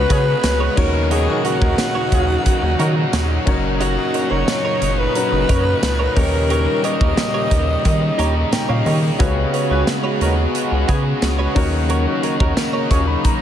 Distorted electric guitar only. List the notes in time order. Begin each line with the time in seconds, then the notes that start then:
Already playing: C#3 G#3 C#4
0.77 A#3 D#4
1.10 D#3 A#3 D#4
2.46 D#3 A#3 D#4
3.47 C#4 F#4
3.80 F#3 C#4 F#4
5.15 F#3 C#4 F#4
6.16 A#3 D#4
6.49 D#3 A#3 D#4
7.84 D#3 A#3 D#4
9.19 C#3 G#3 C#4
10.54 C#3 G#3 C#4
11.56 D#3 A#3 D#4
12.57 D#3 A#3 D#4
13.24 D#3 A#3 D#4